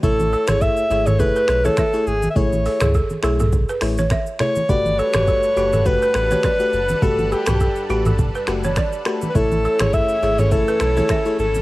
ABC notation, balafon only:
X:1
M:4/4
L:1/16
Q:"Swing 16ths" 1/4=103
K:A
V:1 name="Balafon"
z2 A G A z G A z B z c e2 z2 | z2 A G A z G A z B z c e2 z2 | z2 A =G A z G A z B z c d2 z2 | z2 A =G A z G A z B z c d2 z2 |
z2 A G A z G A z B z c e2 z2 |]